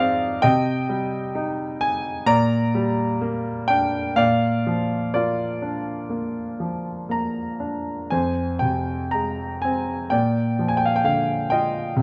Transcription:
0.00 0.39 G#2 medium
0.00 0.38 F3 soft
0.00 0.41 G#3 medium
0.00 0.41 C4 soft
0.00 0.44 D5 medium
0.00 0.43 D#5 medium
0.00 0.45 F5 medium
0.42 2.23 C3 medium
0.42 2.23 D#5 medium
0.42 1.84 G5 medium
0.89 2.23 G3 soft
1.35 2.24 D#4 soft
1.81 2.29 G#5 medium
2.26 4.13 A#2 medium
2.26 4.14 D5 medium
2.26 3.74 A#5 loud
2.75 4.14 G3 medium
3.21 4.15 A#3 medium
3.68 4.17 D4 medium
3.68 4.18 G5 medium
4.16 8.07 A#2 medium
4.16 5.12 D5 medium
4.16 5.10 F5 medium
4.67 6.57 F3 soft
5.14 6.08 A#3 soft
5.14 7.07 F4 soft
5.14 7.16 D5 medium
5.62 7.57 D4 soft
6.10 7.08 A#3 soft
6.60 8.08 F3 soft
7.09 8.08 A#3 soft
7.09 8.15 A#5 medium
7.60 8.10 D4 soft
8.10 10.08 F2 soft
8.10 10.08 C5 soft
8.10 8.64 G#5 medium
8.59 10.08 C3 soft
8.59 9.14 G5 medium
9.11 10.09 G#3 soft
9.11 9.59 A#5 medium
9.62 10.11 C4 soft
9.62 10.08 G#5 medium
10.10 11.94 A#2 medium
10.10 11.94 D5 soft
10.10 10.72 G5 medium
10.59 11.94 F3 soft
10.68 10.79 G#5 medium
10.77 10.88 G5 medium
10.85 10.96 F5 medium
10.96 11.06 G5 medium
11.04 11.94 D3 soft
11.04 11.53 F5 medium
11.50 11.96 F4 soft
11.50 12.02 D#5 medium
11.50 12.02 G5 medium
11.97 12.02 C3 medium

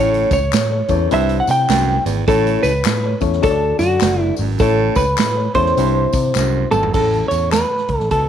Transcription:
0.00 0.23 A1 loud
0.00 0.40 A2 medium
0.00 0.85 A2 medium
0.00 0.37 C#4 medium
0.00 0.38 E4 medium
0.00 0.38 A4 medium
0.00 0.32 C#5 medium
0.00 0.38 C#5 medium
0.14 closed hi-hat medium
0.31 0.48 C#2 loud
0.31 1.15 C#5 medium
0.31 kick loud
0.31 closed hi-hat medium
0.31 tambourine medium
0.53 0.81 A2 loud
0.53 snare loud
0.53 clap loud
0.53 closed hi-hat medium
0.53 tambourine loud
0.71 0.80 A4 medium
0.71 0.81 C#5 medium
0.88 1.06 E2 medium
0.88 1.07 E2 medium
0.88 1.11 C#4 medium
0.88 1.10 E4 medium
0.88 1.12 A4 medium
0.88 1.12 C#5 medium
0.88 kick medium
0.88 closed hi-hat medium
0.88 tambourine soft
1.10 1.40 C2 loud
1.10 1.40 G2 medium
1.10 2.01 C3 medium
1.10 2.09 C4 medium
1.10 2.10 E4 medium
1.10 2.10 G4 medium
1.10 2.10 C5 loud
1.10 1.40 E5 loud
1.10 closed hi-hat medium
1.10 tambourine soft
1.29 closed hi-hat medium
1.40 1.48 F#5 medium
1.47 1.65 C3 medium
1.47 2.03 G5 loud
1.47 snare soft
1.47 closed hi-hat medium
1.47 tambourine medium
1.68 1.97 C2 loud
1.68 1.98 F#2 medium
1.68 snare loud
1.68 clap medium
1.68 closed hi-hat loud
1.68 tambourine medium
2.05 2.23 G#1 medium
2.05 2.23 E2 medium
2.05 closed hi-hat medium
2.05 tambourine medium
2.27 2.55 A1 loud
2.27 2.72 A2 loud
2.27 3.18 A2 medium
2.27 2.70 C#4 medium
2.27 2.70 E4 medium
2.27 2.63 A4 medium
2.27 2.71 A4 medium
2.27 2.71 C#5 medium
2.27 kick loud
2.27 closed hi-hat medium
2.27 tambourine medium
2.47 closed hi-hat medium
2.63 2.81 C#2 medium
2.63 3.17 B4 loud
2.63 closed hi-hat medium
2.63 tambourine medium
2.85 3.13 A2 medium
2.85 snare loud
2.85 clap loud
2.85 closed hi-hat medium
2.85 tambourine loud
3.04 3.13 A4 medium
3.04 3.14 C#5 medium
3.21 3.39 E2 medium
3.21 3.43 C#4 medium
3.21 3.44 E4 medium
3.21 3.42 A4 medium
3.21 3.42 C#5 medium
3.21 kick medium
3.21 closed hi-hat medium
3.21 tambourine soft
3.33 snare soft
3.42 3.72 D2 loud
3.42 4.34 D3 medium
3.42 4.42 D4 medium
3.42 4.42 F#4 medium
3.42 4.42 A4 medium
3.42 3.77 A4 loud
3.42 3.51 C#5 medium
3.42 kick medium
3.42 closed hi-hat medium
3.42 tambourine soft
3.50 4.46 D5 loud
3.79 3.97 F#2 loud
3.79 4.21 F#4 loud
3.79 snare soft
3.79 closed hi-hat medium
3.79 tambourine medium
4.01 4.30 F#1 loud
4.01 snare loud
4.01 clap medium
4.01 closed hi-hat medium
4.01 tambourine medium
4.21 4.34 E4 loud
4.37 4.56 G#1 loud
4.37 4.56 F#2 medium
4.37 open hi-hat medium
4.37 tambourine medium
4.59 4.88 A1 loud
4.59 5.05 A2 loud
4.59 5.51 A2 medium
4.59 5.03 C#4 medium
4.59 5.03 E4 medium
4.59 4.97 A4 medium
4.59 5.04 A4 medium
4.59 5.04 C#5 medium
4.59 kick loud
4.59 closed hi-hat medium
4.59 tambourine medium
4.95 5.14 C#2 loud
4.95 5.55 B4 medium
4.95 kick loud
4.95 closed hi-hat medium
4.95 tambourine medium
5.18 5.47 A2 medium
5.18 snare loud
5.18 clap loud
5.18 closed hi-hat medium
5.18 tambourine loud
5.35 5.46 A4 medium
5.35 5.47 C#5 medium
5.54 5.72 E2 medium
5.54 5.73 E2 medium
5.54 5.77 C#4 medium
5.54 5.77 E4 medium
5.54 5.78 A4 medium
5.54 6.68 C5 medium
5.54 5.78 C#5 medium
5.54 kick medium
5.54 closed hi-hat medium
5.66 snare soft
5.77 6.05 C2 loud
5.77 6.06 G2 medium
5.77 6.68 C3 medium
5.77 6.76 C4 medium
5.77 6.77 E4 medium
5.77 6.77 G4 medium
5.77 6.77 C5 medium
5.77 closed hi-hat medium
5.77 tambourine soft
6.13 6.31 C3 loud
6.13 kick medium
6.13 closed hi-hat medium
6.13 tambourine medium
6.35 6.64 C2 medium
6.35 6.65 F#2 medium
6.35 snare medium
6.35 clap medium
6.35 tambourine medium
6.71 6.89 G#1 loud
6.71 6.90 E2 medium
6.71 6.93 A4 medium
6.71 mid tom loud
6.71 tambourine medium
6.83 floor tom loud
6.94 7.22 A1 loud
6.94 7.23 A2 medium
6.94 7.85 A2 medium
6.94 7.55 C#4 medium
6.94 7.55 E4 medium
6.94 7.03 G#4 medium
6.94 7.28 A4 medium
6.94 kick loud
6.94 crash medium
6.94 tambourine soft
7.02 7.59 A4 medium
7.13 closed hi-hat soft
7.28 7.62 E2 medium
7.28 7.52 C#5 medium
7.28 closed hi-hat medium
7.28 tambourine medium
7.52 7.99 B4 medium
7.52 snare loud
7.52 clap loud
7.52 closed hi-hat medium
7.52 tambourine loud
7.88 7.97 C#2 medium
7.88 kick medium
7.88 closed hi-hat medium
7.99 8.09 A1 medium
7.99 8.11 A4 medium
7.99 snare soft
8.11 8.29 C#2 medium
8.11 8.29 B2 medium
8.11 8.29 A4 medium
8.11 kick medium
8.11 closed hi-hat medium
8.11 tambourine soft

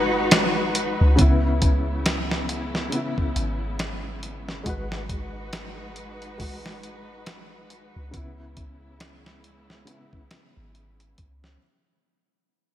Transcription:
0.00 0.96 G#1 medium
0.00 1.12 G#3 medium
0.00 4.62 G#3 medium
0.00 1.15 D#4 medium
0.00 1.14 F#4 medium
0.00 1.15 F#4 medium
0.00 1.15 B4 medium
0.31 snare loud
0.31 closed hi-hat medium
0.75 closed hi-hat medium
1.01 2.89 C#2 loud
1.16 2.86 C#3 medium
1.16 4.63 C#3 medium
1.16 4.62 B3 medium
1.16 2.88 B3 medium
1.16 4.62 E4 medium
1.16 kick loud
1.16 closed hi-hat medium
1.21 2.89 E4 medium
1.62 kick medium
1.62 closed hi-hat medium
2.06 snare loud
2.06 closed hi-hat medium
2.31 snare soft
2.49 closed hi-hat medium
2.75 snare soft
2.90 4.60 C#3 medium
2.90 4.62 B3 medium
2.90 closed hi-hat medium
2.95 4.63 E4 medium
3.18 kick medium
3.36 4.63 G#1 medium
3.36 closed hi-hat medium
3.79 snare loud
3.79 closed hi-hat medium
4.23 closed hi-hat medium
4.49 snare soft
4.64 7.91 G#1 loud
4.64 6.34 G#3 medium
4.64 8.10 G#3 medium
4.64 8.10 D#4 medium
4.64 8.10 F#4 medium
4.64 6.36 F#4 medium
4.64 8.10 B4 medium
4.64 kick medium
4.64 closed hi-hat medium
4.69 6.37 B4 medium
4.92 snare soft
5.09 kick medium
5.09 closed hi-hat medium
5.53 snare loud
5.53 closed hi-hat medium
5.96 closed hi-hat medium
6.22 closed hi-hat soft
6.38 8.08 G#3 medium
6.38 8.10 F#4 medium
6.38 kick loud
6.38 open hi-hat medium
6.43 8.11 B4 medium
6.66 snare soft
6.83 closed hi-hat medium
7.26 snare loud
7.26 closed hi-hat medium
7.70 closed hi-hat medium
7.96 9.84 C#2 medium
8.11 9.82 C#3 medium
8.11 11.58 C#3 medium
8.11 11.59 G#3 medium
8.11 9.83 B3 medium
8.11 11.59 B3 medium
8.11 11.59 E4 medium
8.11 kick loud
8.11 closed hi-hat medium
8.17 9.85 E4 medium
8.57 kick medium
8.57 closed hi-hat medium
9.00 snare loud
9.00 closed hi-hat medium
9.26 snare soft
9.44 closed hi-hat medium
9.70 snare soft
9.85 11.56 C#3 medium
9.85 11.57 B3 medium
9.85 closed hi-hat medium
9.91 11.59 E4 medium
10.13 kick medium
10.31 snare loud
10.31 closed hi-hat medium
10.57 11.15 G#1 loud
10.75 closed hi-hat soft
11.00 closed hi-hat soft
11.18 11.57 C#2 medium
11.18 kick medium
11.18 closed hi-hat medium
11.44 snare soft

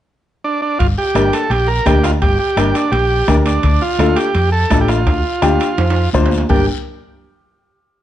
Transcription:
0.44 0.61 D4 medium
0.62 0.78 D4 medium
0.79 0.94 G1 medium
0.79 0.87 F4 loud
0.79 bombo low medium
0.79 high conga soft
0.79 high timbale medium
0.79 long guiro medium
0.98 1.34 G4 medium
1.15 1.29 G1 medium
1.15 1.40 D4 medium
1.15 1.40 G4 medium
1.15 1.40 A#4 medium
1.15 bombo rim medium
1.15 high conga medium
1.15 high timbale medium
1.15 short guiro medium
1.33 1.51 A4 medium
1.33 high timbale medium
1.33 short guiro medium
1.50 1.79 A#1 loud
1.50 1.69 G4 medium
1.50 high conga soft
1.50 high timbale medium
1.50 long guiro medium
1.68 1.86 A#4 loud
1.86 2.23 D2 medium
1.86 2.11 D4 medium
1.86 2.04 G4 loud
1.86 2.11 G4 medium
1.86 2.11 A#4 medium
1.86 bombo low medium
1.86 bombo rim medium
1.86 high conga medium
1.86 high timbale medium
1.86 short guiro medium
2.03 2.12 F4 medium
2.03 bombo rim medium
2.03 high timbale medium
2.03 short guiro medium
2.22 2.36 G1 medium
2.22 2.38 G4 loud
2.22 bombo low medium
2.22 high conga soft
2.22 high timbale medium
2.22 long guiro medium
2.39 2.76 G4 medium
2.57 2.71 G1 medium
2.57 2.82 D4 medium
2.57 2.82 G4 medium
2.57 2.82 A#4 medium
2.57 bombo rim medium
2.57 high conga medium
2.57 high timbale medium
2.57 short guiro medium
2.75 2.91 D4 medium
2.75 high timbale medium
2.75 short guiro medium
2.92 3.21 A#1 loud
2.92 3.29 G4 loud
2.92 high conga soft
2.92 high timbale medium
2.92 long guiro medium
3.28 3.57 D2 medium
3.28 3.53 D4 medium
3.28 3.36 D4 medium
3.28 3.53 G4 medium
3.28 3.53 A#4 medium
3.28 bombo low medium
3.28 bombo rim medium
3.28 high conga medium
3.28 high timbale medium
3.28 short guiro medium
3.46 3.83 D4 medium
3.46 high timbale medium
3.46 short guiro medium
3.63 3.78 D2 medium
3.63 bombo low medium
3.63 high conga soft
3.63 high timbale medium
3.63 long guiro medium
3.82 4.18 F4 medium
3.98 4.13 D2 medium
3.98 4.24 D4 medium
3.98 4.24 F4 medium
3.98 4.24 A4 medium
3.98 bombo rim medium
3.98 high conga medium
3.98 high timbale medium
3.98 short guiro medium
4.16 4.50 G4 medium
4.16 high timbale medium
4.16 short guiro medium
4.35 4.64 F2 loud
4.35 high conga soft
4.35 high timbale medium
4.35 long guiro medium
4.52 4.79 A4 loud
4.70 5.06 A1 medium
4.70 4.95 D4 medium
4.70 4.96 F4 medium
4.70 4.96 A4 medium
4.70 bombo low medium
4.70 bombo rim medium
4.70 high conga medium
4.70 high timbale medium
4.70 low timbale medium
4.70 short guiro medium
4.81 4.88 G4 medium
4.88 6.10 F4 medium
4.88 bombo rim medium
4.88 high timbale medium
4.88 short guiro medium
5.06 5.21 D2 medium
5.06 bombo low medium
5.06 high conga soft
5.06 high timbale medium
5.06 long guiro medium
5.42 5.57 D2 medium
5.42 5.67 D4 medium
5.42 5.67 F4 medium
5.42 5.68 G4 loud
5.42 bombo rim medium
5.42 high conga medium
5.42 high timbale medium
5.42 short guiro medium
5.60 high timbale medium
5.60 short guiro medium
5.78 6.07 F2 loud
5.78 high conga soft
5.78 high timbale medium
5.78 long guiro medium
5.90 high timbale medium
6.13 6.43 D2 medium
6.13 6.39 D4 medium
6.13 6.39 F4 medium
6.13 6.39 C5 medium
6.13 bombo low medium
6.13 bombo rim medium
6.13 high conga medium
6.13 short guiro medium
6.26 low timbale medium
6.31 short guiro medium
6.38 low timbale medium
6.49 6.66 G1 medium
6.49 6.66 D4 medium
6.49 6.66 G4 medium
6.49 6.66 A#4 medium
6.49 bombo low medium
6.49 low conga medium
6.49 low timbale medium
6.49 long guiro medium

